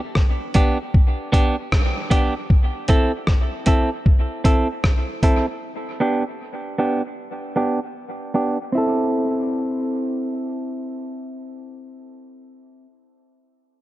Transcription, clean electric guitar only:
0.55 0.77 B3 medium
0.55 0.77 D4 medium
0.55 0.77 G4 medium
1.32 1.55 B3 medium
1.32 1.55 D4 medium
1.32 1.55 G4 medium
2.10 2.33 B3 medium
2.10 2.33 D4 medium
2.10 2.33 G4 medium
2.89 3.11 C4 medium
2.89 3.11 E4 medium
2.89 3.11 A4 medium
3.66 3.89 C4 medium
3.66 3.89 E4 medium
3.66 3.89 A4 medium
4.44 4.67 C4 medium
4.44 4.67 E4 medium
4.44 4.67 A4 medium
5.23 5.45 C4 medium
5.23 5.45 E4 medium
5.23 5.45 A4 medium
5.48 muted clean electric guitar stroke soft
6.00 6.23 B3 medium
6.00 6.23 D4 medium
6.00 6.23 G4 medium
6.78 7.01 B3 medium
6.78 7.01 D4 medium
6.78 7.01 G4 medium
7.56 7.78 B3 medium
7.56 7.79 D4 medium
7.56 7.79 G4 medium
8.34 8.57 B3 medium
8.34 8.57 D4 medium
8.34 8.57 G4 medium
8.72 12.86 C4 medium
8.72 12.88 E4 medium
8.78 12.91 A4 medium

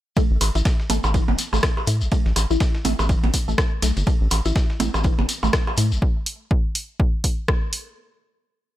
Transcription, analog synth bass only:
0.31 0.38 A1 medium
0.41 0.51 A1 medium
0.55 0.62 A1 loud
0.90 1.00 A1 medium
1.04 1.19 A1 medium
1.28 1.35 G1 medium
1.53 1.60 A1 medium
1.87 2.03 A2 medium
2.02 2.09 A1 medium
2.26 2.33 A1 medium
2.36 2.46 A1 loud
2.50 2.57 A1 loud
2.85 2.95 A1 medium
2.99 3.15 A1 medium
3.24 3.30 A1 loud
3.48 3.55 A1 medium
3.82 3.92 B1 medium
3.97 4.04 G1 loud
4.21 4.28 A1 loud
4.31 4.41 A1 medium
4.46 4.52 A1 loud
4.80 4.90 A1 medium
4.94 5.10 A1 loud
5.19 5.26 G1 medium
5.43 5.50 A1 medium
5.78 5.93 A2 medium
5.92 5.99 A1 medium

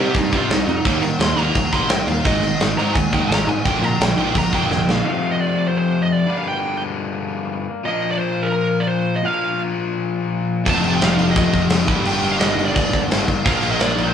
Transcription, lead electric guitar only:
0.01 0.16 G4 medium
0.18 0.36 D#4 medium
0.36 0.53 F4 loud
0.53 0.68 D#4 medium
0.69 1.02 D#4 loud
1.22 1.38 C6 loud
1.38 1.72 A#5 loud
1.74 1.90 C6 loud
1.90 2.07 G5 loud
2.07 2.25 F5 loud
2.26 2.59 D#5 loud
2.78 2.93 A#5 loud
2.94 3.12 G#5 loud
3.14 3.28 G5 loud
3.28 3.46 A#5 loud
3.48 3.65 G#5 loud
3.66 3.84 G5 medium
3.84 4.02 A#5 medium
4.02 4.17 G5 medium
4.18 4.38 G5 loud
4.38 4.54 A#5 loud
4.55 4.71 G5 loud
4.72 4.91 G5 loud
4.91 5.04 F5 loud
5.06 5.30 F5 loud
5.31 5.41 D#5 medium
5.41 5.67 D5 medium
5.68 5.76 C5 medium
5.78 6.01 C5 loud
6.03 6.12 D#5 medium
6.12 6.39 D5 loud
6.37 6.45 F5 loud
6.48 6.80 G5 loud
7.86 8.10 D#5 loud
8.11 8.18 D5 medium
8.18 8.47 C5 medium
8.42 8.51 A#4 medium
8.53 8.81 A#4 loud
8.80 8.88 D5 medium
8.88 9.16 C5 loud
9.16 9.25 D#5 loud
9.25 9.60 F5 loud
10.70 10.94 A5 loud
10.95 11.02 G5 loud
11.05 11.30 F5 medium
11.31 11.37 D#5 medium
11.38 11.62 D#5 medium
12.06 12.30 G5 loud
12.32 12.40 F5 medium
12.40 12.65 D#5 medium
12.66 12.70 D5 medium
12.74 12.99 D5 medium
13.47 13.71 F5 loud
13.72 13.81 D#5 medium
13.81 14.08 D5 loud
14.07 14.14 C5 loud

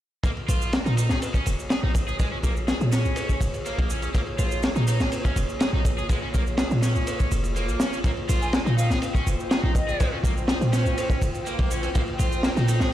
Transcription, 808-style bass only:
0.49 0.79 A#1 medium
0.86 1.12 A#2 medium
1.11 1.18 A#1 loud
1.47 1.55 F1 medium
1.84 2.14 A#1 medium
2.43 2.74 A#1 medium
2.81 3.07 A#2 medium
3.05 3.13 A#1 loud
3.41 3.50 F1 medium
3.78 4.09 A#1 medium
4.39 4.69 A#1 medium
4.76 5.02 A#2 medium
5.00 5.08 A#1 loud
5.36 5.45 F1 medium
5.73 6.04 A#1 medium
6.35 6.65 A#1 medium
6.71 6.97 A#2 medium
6.96 7.04 A#1 loud
7.32 7.70 F1 medium
7.69 7.77 A#1 loud
8.29 8.60 A#1 medium
8.66 8.92 A#2 medium
8.90 8.99 A#1 loud
9.27 9.35 F1 medium
9.64 9.94 A#1 medium
10.24 10.55 A#1 medium
10.61 10.87 A#2 medium
10.86 10.94 A#1 loud
11.22 11.30 F1 medium
11.59 11.89 A#1 medium
12.20 12.50 A#1 medium
12.57 12.82 A#2 medium
12.81 12.89 A#1 loud

